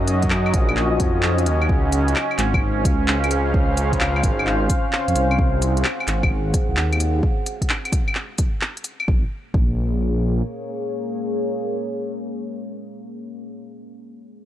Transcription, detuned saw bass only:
Already playing: F#2
0.54 A#1
1.00 F2
1.46 D#2
1.69 C#2
2.38 G#1
2.85 C#2
4.23 G#1
5.08 F2
5.15 C2
6.07 G#1
6.69 C2
6.76 D#2
9.08 A#1
9.54 A#1

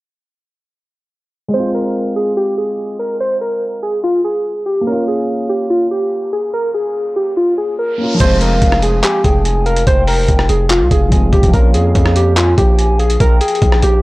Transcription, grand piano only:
1.48 G#3
1.54 C4
1.59 F4
4.81 A#3
4.87 C#4
4.92 F4
7.98 A#3 C#4
8.03 F4
8.14 F3 G#3
8.22 C4 F4
11.09 F3 G#3 C4
11.14 F4
11.48 F3 A#3
11.55 C#4 F4

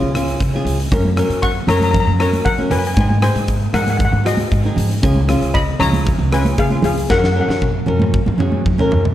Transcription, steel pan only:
1.42 F#5 C#6
1.68 C#5 A#5
1.76 A#5
1.84 A#5
1.91 A#5
2.00 A#5
2.05 A#5
2.20 C#5 A#5
2.45 A#4 F#5
2.71 B4 G#5
2.79 G#5
2.87 G#5
2.94 G#5
3.01 G#5
3.09 G#5
3.23 C5 G#5
3.74 A#4 F#5
3.82 F#5
3.90 F#5
3.97 F#5
4.05 F#5
4.12 F#5
4.25 F#4 D#5
5.54 D#5 B5
5.80 C#5 A#5
6.33 B4 G#5
6.58 G#4 F5
6.84 G#4 F5
7.10 A#4 F#5
7.18 F#5
7.26 F#5
7.32 F#5
7.41 F#5
7.49 F#5

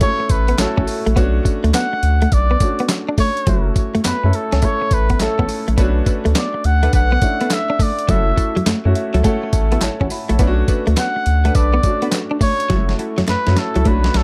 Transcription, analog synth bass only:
0.30 A1
0.59 A1
0.78 A1
1.07 A#1
1.17 B1
1.64 D2
2.03 D2
2.32 B1
3.47 F#1
3.95 F#2
4.06 F#2
4.24 F#2
4.53 C#2
4.91 A1
5.21 A1
5.40 A1
5.69 A#1
5.78 B1
6.26 D2
6.65 D2
6.94 B1
8.09 F#1
8.57 F#2
8.66 F#2
8.86 F#2
9.15 C#2
9.53 A1
9.83 A1
10.01 A1
10.31 A#1
10.39 B1
10.88 D2
11.27 D2
11.56 B1
12.70 F#1
13.19 F#2
13.29 F#2
13.48 F#2
13.76 C#2
13.86 B1
14.15 B1

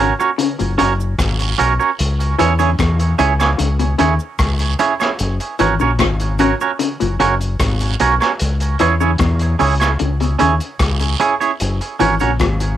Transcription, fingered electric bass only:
Already playing: G#1
0.60 F#1
0.80 F#1
1.19 G#1
1.60 B1
2.00 C#2
2.41 E2
2.80 E2
3.20 C#2
3.60 C#2
4.00 D#2
4.39 C#2
5.20 F#1
5.60 G#1
5.81 A#1
6.00 G#1
7.02 F#1
7.21 F#1
7.60 G#1
8.01 B1
8.41 C#2
8.81 E2
9.20 E2
9.61 C#2
10.01 C#2
10.42 D#2
10.80 C#2
11.61 F#1
12.01 G#1
12.22 A#1
12.41 G#1

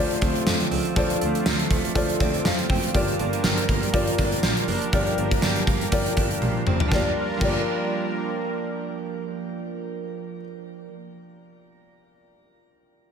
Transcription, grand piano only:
Already playing: F4 A4 C5
0.00 D5
0.96 F4 A4 C5 D5
1.95 F4 A4 C5 D5
2.20 D5
2.45 F5
2.70 G5
2.94 F4 G4 A#4 D5
3.93 F4 G4 A#4 D5
4.93 F4 G4 A#4 D5
5.92 F4 G4 A#4 D5
6.89 F4 G4 A#4
6.94 D5
7.39 F4 G4 A#4
7.44 D5

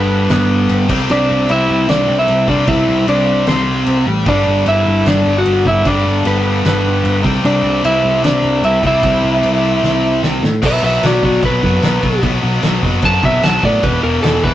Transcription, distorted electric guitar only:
Already playing: G2 D3 G3
0.88 C3 G3 C4
2.48 C3 G3 C4
4.26 G2 D3 G3
5.85 G2 D3 G3
7.23 C3 G3 C4
8.83 C3 G3 C4
10.62 B2 F#3 B3
10.83 B2 F#3 B3
11.02 B2 F#3 B3
11.22 B2 F#3 B3
11.42 B2 F#3 B3
11.63 B2 F#3 B3
11.83 B2 F#3 B3
12.03 B2 F#3 B3
12.22 B2 F#3 B3
12.42 B2 F#3 B3
12.62 B2 F#3 B3
12.84 B2 F#3 B3
13.03 B2 F#3 B3
13.22 B2 F#3 B3
13.43 B2 F#3 B3
13.62 B2 F#3 B3
13.82 E2 B2 E3
14.04 E2 B2 E3
14.24 E2 B2 E3
14.43 E2 B2 E3

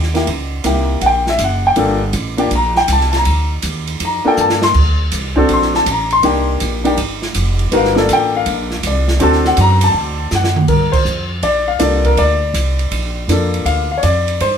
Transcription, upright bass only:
Already playing: D#2
0.27 C#2
0.65 C2
1.01 A#1
1.39 F#1
1.76 G1
2.13 A1
2.51 A#1
2.88 C2
3.26 D2
3.63 D#2
4.00 F2
4.25 muted upright bass stroke
4.38 G2
4.75 D2
5.12 C2
5.49 A#1
5.86 A1
6.24 C2
6.61 A#1
6.97 G1
7.35 F1
7.72 G1
8.09 A1
8.46 A#1
8.83 C2
9.20 D2
9.57 F#2
9.94 D2
10.32 F#2
10.68 G2
10.93 muted upright bass stroke
11.05 F2
11.43 A#1
11.80 C2
12.17 D2
12.54 C2
12.91 A#1
13.28 F2
13.65 D2
14.03 F2
14.40 G2

